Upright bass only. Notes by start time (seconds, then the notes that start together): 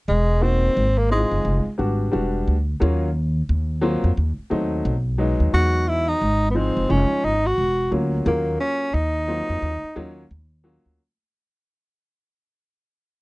0.08 E1
0.77 G#1
1.31 F#1
1.45 F1
1.66 muted upright bass stroke
1.79 G#1
2.13 E1
2.48 D2
2.82 D#2
3.49 D#2
4.04 F2
4.17 D#2
4.38 muted upright bass stroke
4.51 D#2
4.85 B1
5.40 D#2
5.54 E2
6.22 G#1
6.77 F#1
6.90 F1
7.11 muted upright bass stroke
7.24 G#1
7.58 E1
7.92 D2
8.26 D#2
8.94 D#2
9.49 F2
9.62 D#2
9.83 muted upright bass stroke
9.96 D#2
10.31 D#2
10.86 D2